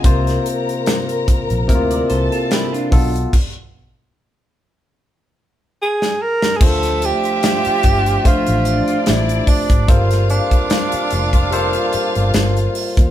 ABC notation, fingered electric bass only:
X:1
M:4/4
L:1/16
Q:"Swing 16ths" 1/4=73
K:Dm
V:1 name="Fingered electric bass" clef=bass
C,,2 z4 z B,,, D,,2 C,, z3 =B,,,2 | z16 | D,,3 z3 G,,,2 z A,,,2 z A,,,2 z ^G,,, | G,,,3 z3 F,,,4 z G,,, G,,,2 z _E,, |]